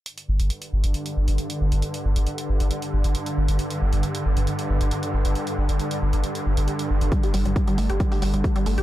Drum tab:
HH |xx-xxx-xxx-xxx-x|xx-xxx-xxx-xxx-x|xx-xxx-xxx-xxx-x|xx-xxx-xxx-xxx-x|
BD |----------------|----------------|----------------|----------------|

HH |xxoxxxoxxooxxxox|
BD |o---o---o---o---|